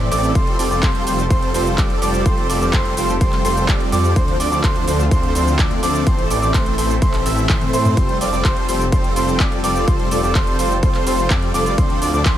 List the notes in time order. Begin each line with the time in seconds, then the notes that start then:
Already playing: A3 C4 E4
0.11 A1 E3 A3 C4 A4 D5 D6, open hi-hat, cabasa
0.24 closed hi-hat, cabasa
0.35 F1 F3 G3 C4 F4 G4 A4 C5 C6, kick, closed hi-hat, cabasa
0.47 closed hi-hat
0.59 F1 G3 C4 F4 A4 D5 D6, open hi-hat, cabasa
0.71 F1 G3 C4 F4 A4 D5 D6, cabasa
0.83 F1 G3 C4 F4 C6, kick, clap, closed hi-hat, cabasa
0.95 closed hi-hat
1.07 F1 G3 C4 F4 A4 C5 C6, open hi-hat, cabasa
1.19 closed hi-hat, cabasa
1.30 F1 G3 C4 F4 A4 C5 C6, kick, closed hi-hat, cabasa
1.42 closed hi-hat
1.54 F1 G3 C4 F4 A4 C5 C6, open hi-hat, cabasa
1.66 closed hi-hat, cabasa
1.78 F1 G3 C4 F4 A4 D5 D6, kick, clap, closed hi-hat, cabasa
1.90 closed hi-hat
2.02 F1 G3 C4 F4 A4 D5 D6, open hi-hat, cabasa
2.14 closed hi-hat, cabasa
2.26 F1 G3 C4 F4 A4 C5 C6, kick, closed hi-hat, cabasa
2.38 closed hi-hat
2.49 F1 G3 C4 F4 A4 D5 D6, open hi-hat, cabasa
2.61 F1 G3 C4 F4 A4 D5 D6, closed hi-hat, cabasa
2.73 F1 G3 C4 F4 A4 C5 C6, kick, clap, closed hi-hat, cabasa
2.85 closed hi-hat
2.97 F1 G3 C4 F4 A4 C5 C6, open hi-hat, cabasa
3.09 closed hi-hat, cabasa
3.21 F1 G3 C4 F4 A4 C5 C6, kick, closed hi-hat, cabasa
3.33 clap, closed hi-hat
3.45 F1 G3 C4 F4 A4 C5 C6, open hi-hat, cabasa
3.57 closed hi-hat, cabasa
3.68 F1 G3 A4 D6, kick, clap, closed hi-hat, cabasa
3.81 closed hi-hat
3.92 F2 G3 C4 F4 A4 D5 D6, open hi-hat, cabasa
4.04 closed hi-hat, cabasa
4.16 D2 D3 F3 A3 C4 D4 F4 C5 C6, kick, closed hi-hat, cabasa
4.28 closed hi-hat
4.40 D2 F3 C4 D4 A4 D5 D6, open hi-hat, cabasa
4.52 D2 F3 C4 D4 A4 D5 D6, closed hi-hat, cabasa
4.64 D2 F3 C4 C5 C6, kick, clap, closed hi-hat, cabasa
4.76 closed hi-hat
4.87 D2 F3 C4 D4 A4 C5 C6, open hi-hat, cabasa
5.00 closed hi-hat, cabasa
5.11 D2 F3 C4 D4 A4 C5 C6, kick, closed hi-hat, cabasa
5.23 closed hi-hat
5.35 D2 F3 C4 D4 A4 C5 C6, open hi-hat, cabasa
5.47 closed hi-hat, cabasa
5.59 D2 F3 D4 A4 D5 D6, kick, clap, closed hi-hat, cabasa
5.71 closed hi-hat
5.83 D2 F3 C4 D4 A4 D5 D6, open hi-hat, cabasa
5.95 closed hi-hat, cabasa
6.07 A1 E3 A3 C4 E4 A4 C5 C6, kick, closed hi-hat, cabasa
6.19 closed hi-hat
6.30 A1 E3 A3 C4 A4 D5 D6, open hi-hat, cabasa
6.42 A1 E3 A3 C4 A4 D5 D6, closed hi-hat, cabasa
6.54 A1 E3 A3 C4 A4 C5 C6, kick, clap, closed hi-hat, cabasa
6.66 closed hi-hat
6.78 A1 E3 A3 C4 A4 C5 C6, open hi-hat, cabasa
6.90 closed hi-hat, cabasa
7.02 A1 E3 A3 C4 A4 C5 C6, kick, closed hi-hat, cabasa
7.14 clap, closed hi-hat
7.26 A1 E3 A3 C4 A4 E5 E6, open hi-hat, cabasa
7.38 closed hi-hat, cabasa
7.49 A2 E3 A3 C4 A4 C6, kick, clap, closed hi-hat, high tom, cabasa
7.61 closed hi-hat, high tom
7.73 A2 E3 A3 C4 A4 C5 C6, open hi-hat, cabasa
7.85 closed hi-hat, mid tom, cabasa
7.97 F1 F3 G3 C4 F4 G4 A4 C5 C6, kick, closed hi-hat, cabasa
8.09 closed hi-hat
8.21 F1 G3 C4 F4 A4 D5 D6, open hi-hat, cabasa
8.33 F1 G3 C4 F4 A4 D5 D6, closed hi-hat, cabasa
8.45 F1 G3 C4 F4 A4 C5 C6, kick, clap, closed hi-hat, cabasa
8.57 closed hi-hat
8.69 F1 G3 C4 F4 A4 C5 C6, open hi-hat, cabasa
8.81 closed hi-hat, cabasa
8.92 F1 G3 C4 F4 A4 C5 C6, kick, closed hi-hat, cabasa
9.04 closed hi-hat
9.16 F1 G3 C4 F4 A4 C5 C6, open hi-hat, cabasa
9.28 closed hi-hat, cabasa
9.40 F1 G3 F4 D5 D6, kick, clap, closed hi-hat, cabasa
9.52 closed hi-hat
9.64 F1 G3 C4 F4 A4 D5 D6, open hi-hat, cabasa
9.76 closed hi-hat, cabasa
9.88 F1 G3 C4 F4 A4 C5 C6, kick, closed hi-hat, cabasa
9.99 closed hi-hat
10.11 F1 G3 C4 F4 A4 D5 D6, open hi-hat, cabasa
10.23 F1 G3 C4 F4 A4 D5 D6, closed hi-hat, cabasa
10.35 F1 G3 C4 F4 A4 C5 C6, kick, clap, closed hi-hat, cabasa
10.47 closed hi-hat
10.59 F1 G3 C4 F4 A4 C5 C6, open hi-hat, cabasa
10.71 closed hi-hat, cabasa
10.83 F1 G3 C4 F4 A4 C5 C6, kick, closed hi-hat, cabasa
10.95 clap, closed hi-hat
11.06 F1 G3 C4 F4 A4 C5 C6, open hi-hat, cabasa
11.18 closed hi-hat, cabasa
11.30 F2 C4 D6, kick, clap, closed hi-hat, cabasa
11.42 closed hi-hat
11.54 F1 G3 C4 F4 A4 D5 D6, open hi-hat, cabasa
11.66 closed hi-hat, cabasa
11.78 D2 D3 F3 A3 C4 D4 A4 C6, kick, closed hi-hat, cabasa
11.90 closed hi-hat
12.02 D2 F3 C4 D4 A4 D5 D6, open hi-hat, cabasa
12.14 D2 F3 C4 D4 A4 D5 D6, closed hi-hat, cabasa
12.25 D2 F3 C4 C5 C6, kick, clap, closed hi-hat, cabasa